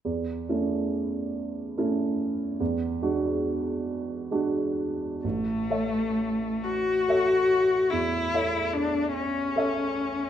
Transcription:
X:1
M:12/8
L:1/8
Q:3/8=47
K:A
V:1 name="Grand piano"
E,, [A,CE]3 [A,CE]2 E,, [G,DF]3 [G,DF]2 | A,,, [Ace]3 [Ace]2 E,, [Ace]3 [Ace]2 |]
V:2 name="Cello"
z12 | A,3 F3 E2 D C3 |]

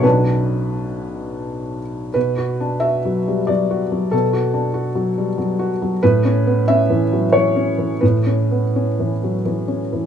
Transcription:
X:1
M:3/4
L:1/8
Q:1/4=89
K:Bm
V:1 name="Felt piano"
[DB]4- [DB] z | B2 e2 d2 | A4- A z | B2 e2 c2 |
B4 z2 |]
V:2 name="Felt piano" clef=bass
[B,,,B,,F,B,C]6 | (3B,, F D (3F F, G, (3F, F F, | (3B,, F D (3F F, G, (3F, F F, | (3A,, C B, (3C E, F, (3E, C E, |
(3A,, C B, (3C E, F, (3E, C E, |]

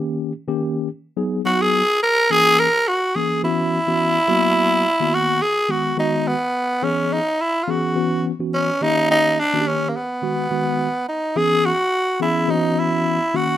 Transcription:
X:1
M:4/4
L:1/16
Q:"Swing 16ths" 1/4=106
K:C#dor
V:1 name="Tenor saxophone"
z8 z2 F G3 A2 | G2 A2 F2 G2 E8- | E4 F2 G2 F2 D2 B,4 | C2 D2 E3/2 ^E/2 F4 z2 C2 D2 |
D2 =D2 C3/2 A,/2 B,8 ^D2 | G2 F4 E2 D2 E4 F2 |]
V:2 name="Tine electric piano"
[D,A,C=G]2 z [D,A,CG]3 z2 [F,B,D^G]2 [F,B,DF]2 z4 | [E,A,CG]2 z4 [E,A,CG]2 [E,B,CF]2 z [E,B,CF]2 z [F,A,B,F]2- | [F,A,B,F]2 z [D,A,B,F]3 z2 [D,G,B,F]2 [D,G,B,F]2 z4 | [E,B,CG]2 z4 [E,B,CG]2 [E,B,CF]2 z [E,B,CF]2 z [D,A,C=G]2- |
[D,A,C=G]2 z [D,A,CFG]3 z2 [D,^G,B,F]2 [D,G,B,F]2 z4 | [E,B,CG]2 z4 [E,B,CG]2 [E,A,B,CF]4- [E,A,B,CF] z [D,A,CF]2 |]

